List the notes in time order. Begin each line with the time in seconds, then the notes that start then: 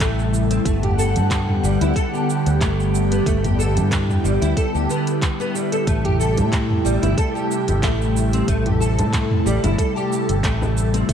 Already playing: C3 G3 A3 E4 A4
0.00 A1 A3, kick, clap, closed hi-hat, cabasa
0.19 cabasa
0.34 cabasa
0.51 C4, closed hi-hat, cabasa
0.65 G1 D3 A3 B3 G4 F#5, kick, closed hi-hat, cabasa
0.83 G4, closed hi-hat, mid tom
0.98 A4, cabasa
1.16 G2, closed hi-hat, cabasa
1.31 kick, clap, closed hi-hat, cabasa
1.49 mid tom
1.63 G1 G3, cabasa
1.81 D2 E4, closed hi-hat, cabasa
1.96 A4, kick, closed hi-hat, cabasa
2.14 G4, cabasa
2.30 cabasa
2.46 D2, closed hi-hat, cabasa
2.61 G1 A3, kick, clap, closed hi-hat, cabasa
2.80 cabasa
2.95 cabasa
3.11 B3, closed hi-hat, cabasa
3.26 G1 A3 E4, kick, closed hi-hat, cabasa
3.44 G4, closed hi-hat, mid tom, cabasa
3.59 A4, cabasa
3.77 G2, closed hi-hat, cabasa
3.92 kick, clap, closed hi-hat, cabasa
4.10 mid tom, cabasa
4.24 G1 G3, cabasa
4.42 D2 E4, closed hi-hat, cabasa
4.57 A4, kick, closed hi-hat, cabasa
4.74 D2 G4, cabasa
4.89 B3, cabasa
5.07 closed hi-hat, cabasa
5.22 kick, clap, closed hi-hat, cabasa
5.40 B3, cabasa
5.55 G3, cabasa
5.72 A4, closed hi-hat, cabasa
5.87 A1 C3 G3 A3 G4, kick, closed hi-hat, cabasa
6.05 G4, closed hi-hat, mid tom
6.20 A4, cabasa
6.37 A2, closed hi-hat, frame drum, cabasa
6.52 kick, clap, closed hi-hat, cabasa
6.70 mid tom
6.85 A1 G3, cabasa
7.02 G1 E4, closed hi-hat, frame drum, cabasa
7.17 A4, kick, closed hi-hat, cabasa
7.35 G4, cabasa
7.51 cabasa
7.68 G1, closed hi-hat, frame drum, cabasa
7.83 A1 A3, kick, clap, closed hi-hat, cabasa
8.02 cabasa
8.17 cabasa
8.33 C4, closed hi-hat, cabasa
8.48 A1 A3 A4, kick, closed hi-hat, cabasa
8.66 G4, closed hi-hat, mid tom
8.80 A4, cabasa
8.99 A2, closed hi-hat, frame drum, cabasa
9.13 kick, clap, closed hi-hat, cabasa
9.31 mid tom
9.46 A1 G3, cabasa
9.64 G1 E4, closed hi-hat, frame drum, cabasa
9.78 A4, kick, closed hi-hat, cabasa
9.96 G4, cabasa
10.12 cabasa
10.29 G1, closed hi-hat, cabasa
10.44 A1 A3, kick, clap, closed hi-hat, cabasa
10.62 frame drum, cabasa
10.77 cabasa
10.94 C4, closed hi-hat, cabasa
11.09 G1 D3 A3 B3 G4 F#5, kick, closed hi-hat, cabasa